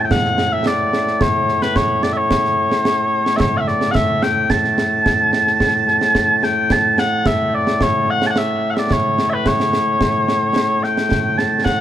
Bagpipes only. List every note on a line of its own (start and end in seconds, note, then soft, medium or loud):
0.00 11.81 A2 medium
0.00 11.81 A3 medium
0.00 0.05 A5 medium
0.05 0.11 G5 medium
0.11 0.53 F#5 medium
0.53 0.67 E5 loud
0.67 1.22 D5 loud
1.22 1.62 C#5 medium
1.62 1.76 B4 medium
1.76 2.03 C#5 medium
2.03 2.13 D5 medium
2.13 2.17 E5 medium
2.17 3.36 C#5 medium
3.36 3.57 C#5 loud
3.36 3.40 E5 loud
3.57 3.67 E5 medium
3.57 3.60 F#5 medium
3.67 3.91 D5 medium
3.91 4.23 E5 loud
3.91 3.95 F#5 loud
4.23 4.50 G5 loud
4.50 6.44 A5 medium
6.44 6.72 G5 loud
6.72 6.99 A5 loud
6.99 7.27 F#5 medium
7.27 7.54 E5 medium
7.54 7.83 D5 loud
7.83 8.10 C#5 medium
8.10 8.27 F#5 loud
8.27 8.38 F#5 medium
8.27 8.30 A5 medium
8.38 8.70 E5 medium
8.70 8.79 E5 medium
8.70 8.74 F#5 medium
8.79 8.93 D5 medium
8.93 9.30 C#5 medium
9.30 9.47 B4 medium
9.30 9.33 E5 medium
9.47 10.84 C#5 medium
10.84 11.38 G5 medium
11.38 11.64 A5 medium
11.64 11.81 F#5 medium